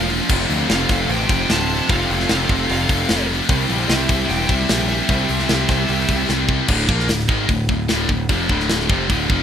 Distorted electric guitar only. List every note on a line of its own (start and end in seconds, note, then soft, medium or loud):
0.06 0.12 A#2 medium
0.06 0.14 F3 medium
0.13 0.20 A#2 medium
0.13 0.21 F3 medium
0.21 0.28 A#2 medium
0.21 0.29 F3 medium
0.29 0.36 F2 medium
0.29 0.38 C3 medium
0.37 0.44 F2 medium
0.37 0.45 C3 medium
0.44 0.51 F2 medium
0.44 0.52 C3 medium
0.51 0.59 F2 medium
0.51 0.60 C3 medium
0.59 0.66 F2 medium
0.59 0.67 C3 medium
0.67 0.74 F2 medium
0.67 0.74 C3 medium
0.74 0.81 F2 medium
0.74 0.82 C3 medium
0.81 0.89 F2 medium
0.81 0.90 C3 medium
0.90 0.96 F2 medium
0.90 0.97 C3 medium
0.97 1.04 F2 medium
0.97 1.04 C3 medium
1.05 1.12 F2 medium
1.05 1.12 C3 medium
1.13 1.19 F2 medium
1.13 1.21 C3 medium
1.20 1.27 F2 medium
1.20 1.28 C3 medium
1.28 1.35 F2 medium
1.28 1.35 C3 medium
1.35 1.43 F2 medium
1.35 1.42 C3 medium
1.43 1.50 F2 medium
1.43 1.50 C3 medium
1.50 1.57 F2 medium
1.50 1.57 C3 medium
1.58 1.64 F2 medium
1.58 1.65 C3 medium
1.64 1.72 F2 medium
1.64 1.73 C3 medium
1.72 1.80 F2 medium
1.72 1.80 C3 medium
1.80 1.88 F2 medium
1.80 1.88 C3 medium
1.89 1.95 F2 medium
1.89 1.97 C3 medium
1.96 2.04 F2 medium
1.96 2.05 C3 medium
2.04 2.12 F2 medium
2.04 2.12 C3 medium
2.12 2.18 F2 medium
2.12 2.19 C3 medium
2.19 2.26 F2 medium
2.19 2.26 C3 medium
2.26 2.34 F2 medium
2.26 2.34 C3 medium
2.34 2.42 F2 medium
2.34 2.42 C3 medium
2.42 2.50 F2 medium
2.42 2.49 C3 medium
2.50 2.57 F2 medium
2.50 2.57 C3 medium
2.57 2.65 F2 medium
2.57 2.65 C3 medium
2.66 2.73 F2 medium
2.66 2.71 C3 medium
2.71 2.79 F2 medium
2.71 2.79 C3 medium
2.79 2.87 F2 medium
2.79 2.87 C3 medium
2.88 2.95 F2 medium
2.88 2.94 C3 medium
2.94 3.03 F2 medium
2.94 3.02 C3 medium
3.02 3.10 F2 medium
3.02 3.09 C3 medium
3.11 3.18 F2 medium
3.11 3.18 C3 medium
3.18 3.26 F2 medium
3.18 3.25 C3 medium
3.26 3.33 F2 medium
3.26 3.33 C3 medium
3.33 3.41 F2 medium
3.33 3.39 C3 medium
3.39 3.48 F2 medium
3.39 3.47 C3 medium
3.49 3.56 C3 medium
3.49 3.57 G3 loud
3.56 3.63 C3 medium
3.56 3.64 G3 medium
3.64 3.71 C3 medium
3.64 3.71 G3 medium
3.72 3.78 C3 medium
3.72 3.79 G3 medium
3.78 3.86 C3 medium
3.78 3.87 G3 medium
3.86 3.94 C3 medium
3.86 3.94 G3 medium
3.94 4.01 C3 medium
3.94 4.02 G3 medium
4.01 4.09 C3 medium
4.01 4.10 G3 medium
4.09 4.17 C3 medium
4.09 4.17 G3 medium
4.17 4.24 C3 medium
4.17 4.24 G3 medium
4.24 4.31 C3 medium
4.24 4.32 G3 medium
4.32 4.38 C3 medium
4.32 4.39 G3 medium
4.38 4.46 C3 medium
4.38 4.47 G3 medium
4.47 4.54 C3 medium
4.47 4.54 G3 medium
4.54 4.61 C3 medium
4.54 4.63 G3 medium
4.62 4.69 C3 medium
4.62 4.70 G3 medium
4.69 4.76 C3 medium
4.69 4.77 G3 medium
4.77 4.83 C3 medium
4.77 4.85 G3 medium
4.84 4.91 C3 medium
4.84 4.93 G3 medium
4.92 4.98 C3 medium
4.92 5.00 G3 medium
4.98 5.06 C3 medium
4.98 5.09 G3 medium
5.08 5.16 C3 medium
5.08 5.17 G3 medium
5.16 5.23 C3 medium
5.16 5.23 G3 medium
5.23 5.31 C3 medium
5.23 5.31 G3 medium
5.31 5.39 C3 medium
5.31 5.39 G3 medium
5.39 5.46 C3 medium
5.39 5.47 G3 medium
5.46 5.54 C3 medium
5.46 5.54 G3 medium
5.55 5.61 C3 medium
5.55 5.62 G3 medium
5.62 5.69 C3 medium
5.62 5.70 G3 medium
5.70 5.76 C3 medium
5.70 5.78 G3 medium
5.76 5.83 C3 medium
5.76 5.84 G3 medium
5.84 5.90 C3 medium
5.84 5.92 G3 medium
5.91 5.99 C3 medium
5.91 6.00 G3 medium
6.00 6.07 C3 medium
6.00 6.08 G3 medium
6.08 6.15 C3 medium
6.08 6.15 G3 medium
6.15 6.22 C3 medium
6.15 6.23 G3 medium
6.23 6.30 C3 medium
6.23 6.31 G3 medium
6.30 6.38 C3 medium
6.30 6.37 G3 medium
6.37 6.45 C3 medium
6.37 6.45 G3 medium
6.46 6.53 C3 medium
6.46 6.53 G3 medium
6.54 6.60 C3 medium
6.54 6.60 G3 medium
6.60 6.68 C3 medium
6.60 6.68 G3 medium
6.68 6.87 D2 medium
6.68 6.88 A2 loud
6.68 6.88 D3 loud
6.88 7.08 A#2 medium
6.88 7.08 F3 loud
6.88 7.08 A#3 loud
7.08 7.25 D2 medium
7.08 7.25 A2 medium
7.28 7.48 G#2 medium
7.28 7.48 D#3 loud
7.28 7.49 G#3 loud
7.48 7.65 D2 medium
7.48 7.65 A2 medium
7.69 7.85 D2 medium
7.69 7.85 A2 medium
7.88 8.08 D2 loud
7.88 8.08 A2 medium
7.88 8.09 D3 loud
8.09 8.25 D2 medium
8.09 8.26 A2 medium
8.29 8.48 F2 medium
8.29 8.49 C3 loud
8.29 8.49 F3 loud
8.49 8.89 D2 medium
8.49 8.89 A2 loud
8.49 8.90 D3 loud
8.90 9.09 F2 loud
8.90 9.09 C3 loud
8.90 9.10 F3 loud
9.10 9.29 D2 medium
9.10 9.29 A2 loud
9.10 9.30 D3 loud
9.29 9.43 F2 medium
9.29 9.43 C3 medium
9.29 9.43 F3 loud